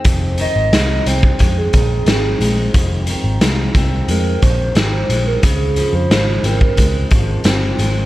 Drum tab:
HH |x-x-x-x-x-x-x-x-|x-x-x-x-x-x-x-x-|x-x-x-x-x-x-x-x-|
SD |----o-------o---|----o-------o---|----o-------o---|
BD |o------oo-o-----|o-----o---o-----|o------oo-o-----|